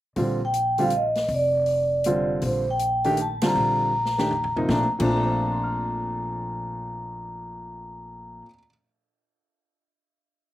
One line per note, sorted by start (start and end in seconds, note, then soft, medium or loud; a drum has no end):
0.16 1.26 A#1 medium
0.16 0.39 D3 medium
0.16 0.39 G3 medium
0.16 0.39 C4 medium
0.16 0.40 F4 medium
0.16 0.30 C5 medium
0.16 open hi-hat soft
0.45 0.82 G5 medium
0.54 closed hi-hat soft
0.78 0.90 D3 medium
0.78 0.91 G3 medium
0.78 0.91 C4 medium
0.78 0.91 F4 medium
0.78 open hi-hat soft
0.83 0.93 F5 medium
0.90 closed hi-hat medium
0.96 1.29 D#5 medium
1.15 snare soft
1.15 open hi-hat soft
1.28 2.38 F1 medium
1.28 open hi-hat soft
1.34 2.28 D5 medium
1.66 open hi-hat soft
2.04 2.63 D3 medium
2.04 2.63 G3 medium
2.04 2.63 C4 medium
2.04 2.63 F4 medium
2.04 closed hi-hat medium
2.41 3.52 A#1 medium
2.41 open hi-hat soft
2.46 2.67 C5 medium
2.71 3.16 G5 medium
2.79 closed hi-hat medium
3.04 3.17 D#3 medium
3.04 3.17 A3 medium
3.04 3.17 D4 medium
3.04 3.17 G4 medium
3.04 open hi-hat soft
3.17 closed hi-hat medium
3.21 3.32 A5 medium
3.41 3.91 D3 medium
3.41 3.91 G3 medium
3.41 3.91 C4 medium
3.41 3.91 F4 medium
3.41 snare medium
3.41 ride medium
3.46 4.54 A#5 loud
3.55 4.65 A#1 medium
4.05 snare soft
4.18 4.30 D#3 medium
4.18 4.30 A3 medium
4.18 4.30 D4 medium
4.18 4.31 G4 medium
4.18 snare medium
4.31 floor tom medium
4.44 floor tom medium
4.56 4.69 C3 medium
4.56 4.67 F3 medium
4.56 4.70 A#3 medium
4.56 4.70 D#4 medium
4.56 floor tom medium
4.68 4.83 A#1 medium
4.68 4.84 A#2 medium
4.68 4.84 F3 medium
4.68 4.84 A3 medium
4.68 4.85 C4 medium
4.68 4.85 D4 medium
4.68 4.84 A#5 medium
4.68 kick medium
4.68 snare medium
4.99 8.41 A#1 medium
4.99 8.44 A#2 medium
4.99 8.45 F3 medium
4.99 8.45 A3 medium
4.99 8.45 C4 medium
4.99 8.46 D4 medium
4.99 8.42 A#5 medium
4.99 kick soft
4.99 crash medium
5.07 8.41 F4 soft
5.14 8.45 A4 soft
5.23 8.49 C5 soft
5.31 8.53 F5 soft
5.41 8.58 A5 soft
5.52 8.64 C6 soft
5.64 8.70 F6 soft